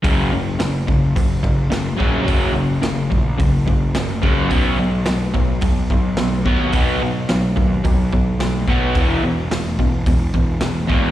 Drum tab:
HH |o-o-o-o-|o-o-o-o-|o-o-o-o-|o-o-o-o-|
SD |--o---o-|--o---o-|--o---o-|--o---o-|
BD |o--ooo-o|o--ooo-o|o--ooo-o|o--ooo-o|

HH |o-o-o-o-|
SD |--o---o-|
BD |o--ooo-o|